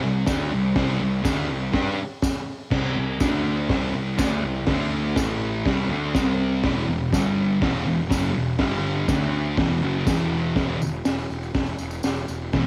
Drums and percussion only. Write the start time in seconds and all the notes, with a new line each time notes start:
0.26 kick, snare, open hi-hat, tambourine
0.75 kick, snare, open hi-hat
1.25 kick, snare, open hi-hat, tambourine
1.73 kick, snare, open hi-hat
2.22 kick, snare, open hi-hat, tambourine
2.71 kick, snare, crash
3.20 kick, snare, open hi-hat, tambourine
3.69 kick, snare, open hi-hat
4.19 kick, snare, open hi-hat, tambourine
4.67 kick, snare, open hi-hat
5.16 kick, snare, open hi-hat, tambourine
5.66 kick, snare, open hi-hat
6.14 kick, snare, open hi-hat, tambourine
6.63 kick, snare, open hi-hat
7.13 kick, snare, open hi-hat, tambourine
7.62 kick, snare, open hi-hat
8.11 kick, snare, open hi-hat, tambourine
8.59 kick, snare, open hi-hat
9.08 kick, snare, open hi-hat, tambourine
9.57 kick, snare, open hi-hat
10.07 kick, snare, open hi-hat, tambourine
10.56 kick, snare, open hi-hat, tambourine
10.82 tambourine
11.05 snare, open hi-hat, tambourine
11.18 tambourine
11.30 tambourine
11.43 tambourine
11.54 kick, snare, open hi-hat, tambourine
11.66 tambourine
11.79 tambourine
11.91 tambourine
12.03 snare, open hi-hat, tambourine
12.16 tambourine
12.28 tambourine
12.53 kick, snare, open hi-hat, tambourine